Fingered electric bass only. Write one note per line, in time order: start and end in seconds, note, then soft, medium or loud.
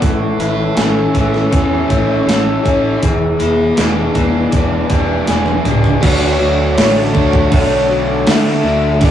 0.02 0.32 A1 medium
0.39 0.69 A1 medium
0.77 1.07 A1 medium
1.15 1.44 A1 medium
1.52 1.82 E2 medium
1.91 2.20 A1 medium
2.27 2.57 A1 medium
2.66 2.95 A1 medium
3.03 3.32 E1 medium
3.41 3.70 E1 medium
3.78 4.08 E1 medium
4.16 4.45 E1 medium
4.53 4.83 E1 medium
4.90 5.20 E1 medium
5.28 5.58 E1 medium
5.66 5.95 C#2 medium
6.03 6.39 D2 loud
6.41 6.77 D2 medium
6.78 7.14 A1 medium
7.15 7.51 D2 medium
7.52 8.24 B1 loud
8.27 8.63 D3 loud
8.64 9.00 D2 medium
9.02 9.11 G1 loud